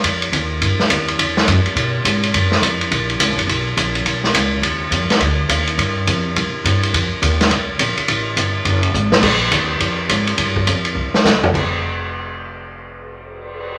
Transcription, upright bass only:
X:1
M:4/4
L:1/8
Q:"Swing" 1/4=209
K:Fm
V:1 name="Upright bass" clef=bass
F,,2 E,,2 G,, z E,,2 | =E,,2 ^F,, z =B,,2 ^G,,2 | _G,,2 F,,2 B,,,2 (3D,, B,,, _G,,, | =B,,,2 _B,,,2 =B,,,2 D,,2 |
E,,2 F,, z =D,,2 E,,2 | G,,2 F,,2 C,, z G,,2 | F,, z E,,2 C,,2 B,,, z | =A,,,2 G,,,2 _G,,,2 _A,,,2 |
B,,,2 E,,2 F,,2 A,,2 | G,,2 F,,2 C,, z D,,2 | F,,,8- | F,,,8 |]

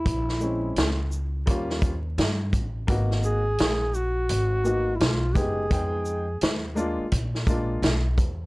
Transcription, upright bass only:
X:1
M:4/4
L:1/16
Q:"Swing 16ths" 1/4=85
K:Abdor
V:1 name="Upright bass" clef=bass
B,,,4 D,,4 E,,4 =G,,2 =A,,,2 | A,,,4 B,,,4 A,,,4 C,,2 G,,,2 | F,,4 E,,3 z B,,,4 C,,2 _F,,2 |]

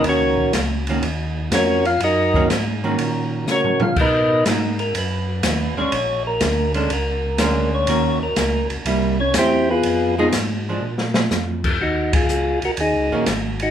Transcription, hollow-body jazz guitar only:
X:1
M:4/4
L:1/8
Q:"Swing" 1/4=122
K:Bbphr
V:1 name="Hollow-body jazz guitar"
[E,B,DG]2 z [E,B,DG] z4 | z [E,B,DG] z [E,B,DG]3 z2 | z2 [^A,^D^F] z4 [_A,_D=D] | z3 [A,^C=D] z2 [A,CD]2 |
[E,B,DG] z3 [=G,B,=E] z3 | z [F,CEA] z [F,A,=D] z4 | z4 z [E,B,DG] z2 |]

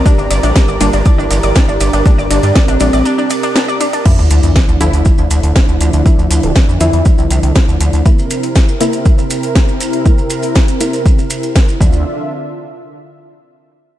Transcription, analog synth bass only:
X:1
M:4/4
L:1/16
Q:1/4=120
K:Dm
V:1 name="Analog synth bass" clef=bass
z G,,, G,,, A,,, z G,,, G,,, G,,, z G,,, G,,, G,,, z G,,, G,,, G,,, | z G,,, G,,, G,, z A,,, A,,, A,,, z8 | z D,, D,, E,, z D,, D,, D,, z D,, D,, D,, z D,, D,, D,, | z D,, D,, D,,, z E,, E,, E,, z C,, C,, C,, z D,, D,, D,, |
z16 | z12 z2 D,,2 | z16 |]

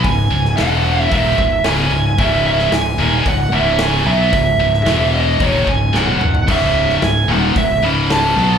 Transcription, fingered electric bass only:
X:1
M:4/4
L:1/8
Q:1/4=112
K:C#m
V:1 name="Fingered electric bass" clef=bass
C,,, C,,, E,,,2 D,,, C,,, C,,, C,,, | C,,,2 C,,, D,,, C,,, C,,,2 B,,, | C,,, C,,, E,,,2 D,,, C,,, C,,, C,,, | C,,,2 C,,, D,,, C,,, C,,,2 B,,, |]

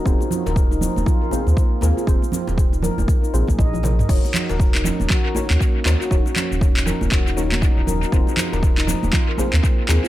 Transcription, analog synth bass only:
X:1
M:4/4
L:1/16
Q:"Swing 16ths" 1/4=119
K:Fphr
V:1 name="Analog synth bass" clef=bass
E,,, z2 E,,,3 z E,,, z3 E,, z2 E,, z | E,,, z2 E,,,3 z E,,, z2 B,,, B,,,4 z | E,,, z2 E,,,3 z E,,, z3 E,, z2 E,, z | E,,, z2 E,,,3 z E,,, E,,,4 z E,,, E,,, z |
E,,, z2 E,,,3 z E,,, z3 E,, z2 E,, z |]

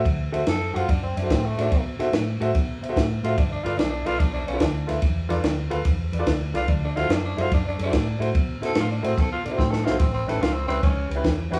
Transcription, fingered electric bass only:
X:1
M:4/4
L:1/8
Q:"Swing" 1/4=145
K:Dmix
V:1 name="Fingered electric bass" clef=bass
D,, D,, F,, F,, F,, F,, A,, A,, | B,, B,, A,, A,, B,, B,, A,, A,, | G,,, G,,, B,,, B,,, B,,, B,,, D,, D,, | E,, E,, D,, D,, E,, E,, D,, C,, |
D,, D,, F,, F,, F,, F,, A,, A,, | B,, B,, A,, A,, B,, B,, A,, B,,, | A,,, A,,, ^C,, C,, C,, C,, E,, E,, |]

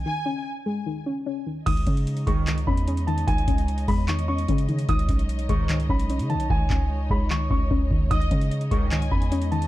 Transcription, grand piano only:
X:1
M:4/4
L:1/8
Q:1/4=149
K:C#m
V:1 name="Grand piano"
z8 | d'3 c'2 b2 a | g3 b c' c'3 | d'3 c'2 b2 a |
g3 b c' c'3 | d'3 c'2 b2 a |]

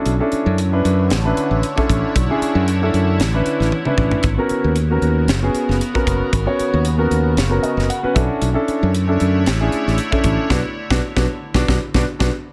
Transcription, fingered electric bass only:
X:1
M:4/4
L:1/16
Q:"Swing 16ths" 1/4=115
K:Blyd
V:1 name="Fingered electric bass" clef=bass
B,,, z2 F,,3 F,,2 =A,,,2 z A,,, z2 A,,, z | B,,, z2 F,,3 F,,2 =A,,,2 z A,,, z2 A,,, z | G,,, z2 D,,3 D,,2 F,,,2 z F,,, z2 F,,, z | G,,, z2 D,,3 D,,2 F,,,2 z F,,, z2 B,,, z |
B,,, z2 F,,3 F,,2 =A,,,2 z A,,, z2 A,,, z | B,,, z2 B,,, z B,,, z2 B,,, B,,, z B,,, z B,,, z2 |]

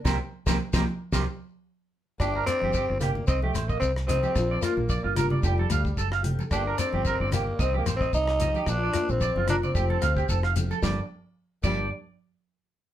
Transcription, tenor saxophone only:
X:1
M:4/4
L:1/16
Q:"Swing 16ths" 1/4=111
K:Gm
V:1 name="Tenor saxophone"
z16 | D2 C4 B,2 C A,2 B, C2 C2- | C2 B,4 G,8 z2 | D2 C4 B,2 (3C2 B,2 C2 E4 |
D3 C3 D C6- C z2 | G, z4 z G,2 z8 |]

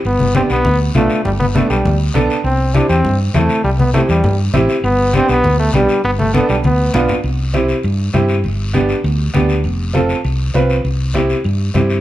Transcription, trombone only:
X:1
M:4/4
L:1/16
Q:1/4=200
K:C
V:1 name="Trombone"
B,4 C2 B,4 z2 A,4 | G,2 B,2 A,2 G,4 z6 | C4 D2 C4 z2 A,4 | G,2 B,2 A,2 G,4 z6 |
B,4 C2 B,4 A,2 G,4 | B,2 A,2 B,2 G,2 B,4 B,3 z | z16 | z16 |
z16 | z16 |]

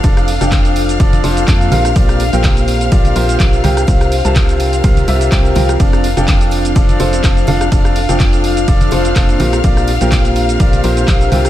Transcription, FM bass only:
X:1
M:4/4
L:1/16
Q:"Swing 16ths" 1/4=125
K:F
V:1 name="FM bass" clef=bass
F,,,3 F,,,4- F,,, F,,,2 F,,,2 F,,2 B,,,2 | B,,,3 B,,,4- B,,, B,,,2 B,,,2 B,,,2 C,,2 | C,,3 C,,4- C,, C,,2 C,,2 C,,2 C,,2 | F,,,3 F,,,4- F,,, F,,,2 F,,,2 F,,,2 F,,,2 |
F,,,3 F,,,4- F,,, F,,,2 F,,,2 F,,,2 B,,,2 | B,,,3 B,,,4- B,,, B,,,2 B,,,2 B,,,2 C,,2 |]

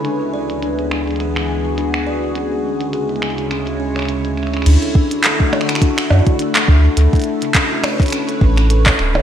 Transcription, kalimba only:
X:1
M:4/4
L:1/16
Q:"Swing 16ths" 1/4=104
K:Dlyd
V:1 name="Kalimba"
D F d z D G D D G E z D, D F d z | C G C C G E z C, C F C c C C C C | D A D D A E z D, D F d z D A D D | A E z C, C F c z C A C C A E z C, |]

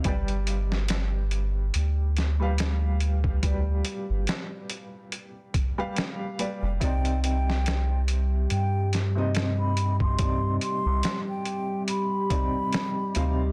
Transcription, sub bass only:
X:1
M:4/4
L:1/16
Q:"Swing 16ths" 1/4=71
K:Cm
V:1 name="Sub bass" clef=bass
G,,,8 D,,8- | D,,2 z G,,, z8 z3 F,,, | C,,8 G,,8- | G,,2 z C,, z8 z2 D,,2 |]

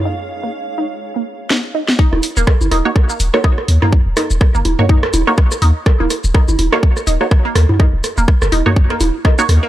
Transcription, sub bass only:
X:1
M:4/4
L:1/16
Q:"Swing 16ths" 1/4=124
K:Ebm
V:1 name="Sub bass" clef=bass
z16 | z E,,, z E,,, z G,,, E,,, z3 E,,, z3 E,, z | z E,,, z E,,, z G,,, E,,, z3 E,,, z3 E,, z | z E,,, z E,,, z G,,, E,,, z3 E,,, z3 E,, z |
z E,,, z E,,, z G,,, E,,, z3 E,,, z3 E,, z |]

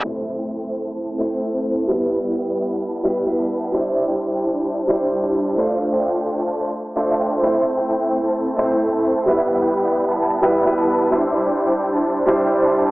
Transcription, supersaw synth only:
X:1
M:4/4
L:1/16
Q:1/4=130
K:Am
V:1 name="Supersaw synth"
[A,CEc]3 [A,CEcg]4 [A,CEca]3 [A,CEcg]3 [A,CEca]3 | [G,B,EBe]3 [G,B,EBg]4 [G,B,EBa]3 [G,B,EBg]3 [G,B,EBa]3 | [G,DEce]3 [G,DEcg]4 [G,DEca]3 [G,DEcg]3 [G,DEca]3 | [A,DFcf]3 [A,DFcg]4 [A,DFca]3 z2 [A,DFce]2 [A,DFcg]2 |
[A,CEce]3 [A,CEcg]4 [A,CEca]3 [A,CEcg]3 [A,CEca]3 | [G,B,EBe]3 [G,B,EBg]4 [G,B,EBa]3 [G,B,EBg]3 [G,B,EBa]3 | [G,DEce]3 [G,DEcg]4 [G,DEca]3 [G,DEcg]3 [G,DEca]3 |]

